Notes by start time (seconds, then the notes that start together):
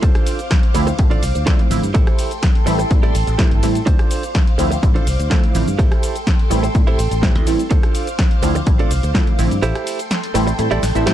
0.02 D2 D4 F4 A4 C5 F5 D6, kick, closed hi-hat, ride, shaker
0.15 cross-stick, closed hi-hat
0.27 open hi-hat, ride, shaker
0.39 closed hi-hat, shaker
0.51 kick, snare, closed hi-hat, ride, shaker
0.63 closed hi-hat
0.74 D2 D3 F3 A3 C4 E4, muted clean electric guitar stroke, open hi-hat, ride, shaker
0.87 muted clean electric guitar stroke, closed hi-hat, shaker
0.98 A1 D3 F3 A3 C4 E4, muted clean electric guitar stroke, kick, closed hi-hat, ride, shaker
1.10 D4 F4 A4 D5, closed hi-hat
1.23 C2, open hi-hat, ride, shaker
1.35 D2, muted clean electric guitar stroke, closed hi-hat, shaker
1.46 D3 F3 A3 C4 D4 E4 F4 A4 D5, kick, snare, closed hi-hat, ride, shaker
1.59 closed hi-hat
1.70 A1 D3 F3 A3 C4 E4, muted clean electric guitar stroke, open hi-hat, ride, shaker
1.83 G2, closed hi-hat, shaker
1.94 A1 E4 G4 A4 C5 G5 C6, kick, closed hi-hat, ride, shaker
2.07 cross-stick, closed hi-hat
2.19 open hi-hat, ride, shaker
2.31 closed hi-hat, shaker
2.43 kick, snare, closed hi-hat, ride, shaker
2.55 closed hi-hat
2.66 A1 E3 G3 A3 C4 E4, muted clean electric guitar stroke, open hi-hat, ride, shaker
2.79 muted clean electric guitar stroke, closed hi-hat, shaker
2.90 A2 E3 G3 A3 C4 E4, muted clean electric guitar stroke, kick, closed hi-hat, ride, shaker
3.03 A1 E4 G4 A4 D5, closed hi-hat
3.15 A1, open hi-hat, ride, shaker
3.27 A1, muted clean electric guitar stroke, closed hi-hat, shaker
3.38 A2 E3 G3 A3 C4 E4 G4 A4 C5, kick, snare, closed hi-hat, ride, shaker
3.51 G1, closed hi-hat
3.62 A2 E3 G3 A3 C4 E4, muted clean electric guitar stroke, open hi-hat, ride, shaker
3.75 closed hi-hat, shaker
3.86 D2 D4 F4 A4 C5 F5 D6, kick, closed hi-hat, ride, shaker
3.99 cross-stick, closed hi-hat
4.11 open hi-hat, ride, shaker
4.23 closed hi-hat, shaker
4.35 kick, snare, closed hi-hat, ride, shaker
4.47 closed hi-hat
4.58 D2 D3 F3 A3 C4 E4, muted clean electric guitar stroke, open hi-hat, ride, shaker
4.71 muted clean electric guitar stroke, closed hi-hat, shaker
4.83 A1 D3 F3 A3 C4 E4, muted clean electric guitar stroke, kick, closed hi-hat, ride, shaker
4.95 D4 F4 A4 C5, closed hi-hat
5.07 C2, open hi-hat, ride, shaker
5.19 D2, muted clean electric guitar stroke, closed hi-hat, shaker
5.30 D3 F3 A3 C4 D4 E4 F4 A4 C5, kick, snare, closed hi-hat, ride, shaker
5.44 closed hi-hat
5.54 A1 D3 F3 A3 C4 E4, muted clean electric guitar stroke, open hi-hat, ride, shaker
5.67 G2, closed hi-hat, shaker
5.79 A1 E4 G4 A4 C5 G5 C6, kick, closed hi-hat, ride, shaker
5.92 cross-stick, closed hi-hat
6.03 open hi-hat, ride, shaker
6.16 closed hi-hat, shaker
6.27 kick, snare, closed hi-hat, ride, shaker
6.39 closed hi-hat
6.50 A1 E3 G3 A3 C4 E4, muted clean electric guitar stroke, open hi-hat, ride, shaker
6.63 muted clean electric guitar stroke, closed hi-hat, shaker
6.74 A2 E3 G3 A3 C4 E4, muted clean electric guitar stroke, kick, closed hi-hat, ride, shaker
6.87 A1 E4 G4 A4 C5, closed hi-hat
6.99 A1, open hi-hat, ride, shaker
7.11 A1, muted clean electric guitar stroke, closed hi-hat, shaker
7.22 E3 G3 A3 C4 E4 G4 A4 C5, kick, snare, closed hi-hat, ride, shaker
7.35 D2, closed hi-hat
7.47 A1 E3 G3 A3 C4 E4, muted clean electric guitar stroke, open hi-hat, ride, shaker
7.59 closed hi-hat, shaker
7.71 D2 D4 F4 A4 C5 F5 D6, kick, closed hi-hat, ride, shaker
7.83 cross-stick, closed hi-hat
7.95 open hi-hat, ride, shaker
8.07 closed hi-hat, shaker
8.19 kick, snare, closed hi-hat, ride, shaker
8.31 closed hi-hat
8.42 D2 D3 F3 A3 C4 E4, muted clean electric guitar stroke, open hi-hat, ride, shaker
8.55 muted clean electric guitar stroke, closed hi-hat, shaker
8.66 A1 D3 F3 A3 C4 E4, muted clean electric guitar stroke, kick, closed hi-hat, ride, shaker
8.79 D4 F4 A4 D5, closed hi-hat
8.91 C2, open hi-hat, ride, shaker
9.03 D2, muted clean electric guitar stroke, closed hi-hat, shaker
9.14 D3 F3 A3 C4 D4 E4 F4 A4 C5, kick, snare, closed hi-hat, ride, shaker
9.27 closed hi-hat
9.39 A1 D3 F3 A3 C4 E4, muted clean electric guitar stroke, open hi-hat, ride, shaker
9.51 G2, closed hi-hat, shaker
9.62 A1 E4 G4 A4 C5 G5 C6, closed hi-hat, ride, shaker
9.75 cross-stick, closed hi-hat
9.87 open hi-hat, ride, shaker
9.99 closed hi-hat, shaker
10.11 snare, closed hi-hat, ride, shaker
10.24 closed hi-hat
10.34 A1 E3 G3 A3 C4 E4, muted clean electric guitar stroke, open hi-hat, ride, shaker
10.47 muted clean electric guitar stroke, closed hi-hat, shaker
10.58 A2 E3 G3 A3 C4 E4, muted clean electric guitar stroke, closed hi-hat, ride, shaker
10.71 A1 E4 G4 A4 D5, closed hi-hat
10.83 A1, snare, open hi-hat, ride, shaker
10.95 A1 E3 G3 A3 C4 E4, muted clean electric guitar stroke, closed hi-hat, shaker
11.06 A2 E4 G4 A4 C5, snare, closed hi-hat, ride, shaker